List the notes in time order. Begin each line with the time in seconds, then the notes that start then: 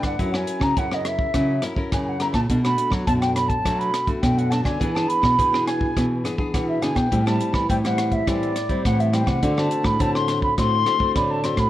Already playing: D3 D4 E4 B4
0.02 G2 F#5, kick, cross-stick, closed hi-hat
0.19 F#2 F#3 C#4 E4 A#4, kick, closed hi-hat
0.33 C#4 E4 A#4 G#5, cross-stick
0.47 closed hi-hat
0.60 C#3 A#5, kick, cross-stick
0.77 F#2 C#3 C#4 E4 A#4 F#5, kick, closed hi-hat
0.91 C#4 E4 A#4 D#5, cross-stick
1.05 E5, cross-stick, closed hi-hat
1.19 kick
1.34 C#3 F#3 C#4 E4 A#4, kick, cross-stick, closed hi-hat
1.62 C#4 E4 A#4, cross-stick, closed hi-hat
1.76 C#4 E4 A#4, kick
1.92 F#2 C#3 G#5, kick, cross-stick, closed hi-hat
2.04 G#5
2.08 F#5
2.20 C#4 E4 A#4 A#5, cross-stick, closed hi-hat
2.33 A#2 A5, kick, cross-stick, closed hi-hat
2.50 B2 A3 D4 F#4, kick, closed hi-hat
2.64 A3 D4 F#4 B5, cross-stick, closed hi-hat
2.78 closed hi-hat
2.91 F#3, kick, cross-stick
3.06 F#2 B2 A3 D4 F#4 A5, kick, closed hi-hat
3.21 G5, cross-stick, closed hi-hat
3.34 B5, cross-stick, closed hi-hat
3.48 A5, kick, closed hi-hat
3.65 B2 F#3 A3 D4 F#4, kick, cross-stick, closed hi-hat
3.79 B5, closed hi-hat
3.94 cross-stick, closed hi-hat
4.07 A3 D4 F#4, kick, closed hi-hat
4.21 F#2 B2 G5, kick, cross-stick, closed hi-hat
4.37 F#5, closed hi-hat
4.50 A3 D4 F#4 A5, cross-stick, closed hi-hat
4.64 D3 G#5, kick, cross-stick, closed hi-hat
4.79 E3 B3 D4 G#4, kick, closed hi-hat
4.94 B3 D4 G#4 A5, cross-stick
5.08 B5, closed hi-hat
5.22 B2, kick, cross-stick
5.38 B2 E3 B3 D4 G#4, kick, closed hi-hat
5.52 B3 D4 G#4, cross-stick
5.66 G#5, cross-stick, closed hi-hat
5.81 kick
5.96 B2 E3 B3 D4 G#4, kick, cross-stick, closed hi-hat
6.24 B3 D4 G#4, cross-stick, closed hi-hat
6.38 B3 D4 G#4, kick
6.53 B2 E3 F#5, kick, cross-stick, closed hi-hat
6.68 E5
6.81 D3 B3 D4 G#4 G#5, cross-stick, closed hi-hat
6.95 B2 G5, kick, cross-stick, closed hi-hat
7.11 A2 G3 C4 E4, kick, closed hi-hat
7.26 G3 C4 E4 A5, cross-stick, closed hi-hat
7.41 closed hi-hat
7.53 E3 B5, kick, cross-stick
7.69 A2 E3 G3 C4 E4 G5, kick, closed hi-hat
7.84 G3 C4 E4 F#5, cross-stick, closed hi-hat
7.98 cross-stick, closed hi-hat
8.12 E5, kick, closed hi-hat
8.27 A2 E3 G3 C4 E4 D5, kick, cross-stick, closed hi-hat
8.43 closed hi-hat
8.56 cross-stick, closed hi-hat
8.69 G3 C4 E4, kick, closed hi-hat
8.85 A2 E3 F#5, kick, cross-stick, closed hi-hat
8.99 E5, closed hi-hat
9.12 G3 C4 E4 G5, cross-stick, closed hi-hat
9.26 C3 F#5, kick, cross-stick, closed hi-hat
9.42 D3 A3 C4 F#4, kick, closed hi-hat
9.57 A3 C4 F#4 A5, cross-stick
9.71 closed hi-hat
9.83 A2 B5, kick, cross-stick
9.99 A2 D3 A3 C4 F#4 A5, kick, closed hi-hat
10.14 C6, cross-stick
10.28 cross-stick, closed hi-hat
10.42 B5, kick
10.57 A2 D3 A3 C4 F#4 C6, kick, cross-stick, closed hi-hat
10.86 A3 C4 F#4, cross-stick, closed hi-hat
10.99 A3 C4 F#4, kick
11.15 A2 D3 B5, kick, cross-stick, closed hi-hat
11.30 A5
11.44 A3 C4 F#4 C6, cross-stick, closed hi-hat
11.56 A2 B5, kick, cross-stick, closed hi-hat